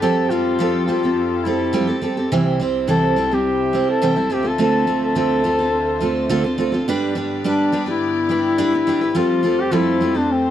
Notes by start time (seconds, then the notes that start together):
Already playing: G4
0.00 F2 F3 G3 C4 G4 A4
0.30 G3 C4 F4 G4 A4
0.59 F3 G3 C4 G4 A4
0.86 G3 C4 F4 G4 A4
1.03 C4 G4 A4
1.44 G3 C4 E4 G4 A4
1.73 F3 G3 C4 G4 A4
1.87 C4 G4 A4
2.02 G3 C4 G4 A4
2.17 C4 G4 A4
2.30 C2 C3 E3 G3 C4 E4 C5 E5
2.60 G3 C4 E4 C5
2.87 C3 E3 G3 C4 E4 A4 C5
3.16 G3 C4 E4 C5
3.31 G3 C4 E4 G4 C5
3.73 G3 C4 E4 C5
3.90 A4
4.02 C3 E3 G3 C4 E4 C5
4.16 G3 C4 E4 C5
4.29 D2 D3 F3 A3 C4 F4 A4 C5
4.33 G4
4.43 C4 F4 A4
4.48 A4
4.58 D3 A3 C4 F4 A4
4.87 A3 C4 F4 A4
5.05 A4
5.15 D3 A3 C4 F4 A4
5.44 A3 C4 F4 A4
5.59 C4 F4 A4
6.01 A3 C4 F4 A4
6.29 D3 A3 C4 F4 A4
6.44 C4 F4 A4
6.58 A3 C4 F4 A4
6.72 C4 F4 A4
6.86 G2 G3 B3 D4 G4 B4 D5
7.15 G3 D4 G4 B4
7.44 G3 D4 G4 B4
7.72 G3 D4 G4 B4
7.86 D4 E4 G4 B4
8.29 G3 D4 G4 B4
8.58 G3 D4 G4 B4
8.73 D4 G4 B4
8.87 G3 D4 G4 B4
9.01 D4 G4 B4
9.15 F2 F3 G3 A3 C4 F4 A4 C5
9.43 G3 C4 F4 A4
9.61 G4
9.71 F3 G3 C4 E4 F4 A4
10.01 G3 C4 F4 A4
10.15 C4 D4 F4 A4
10.31 C4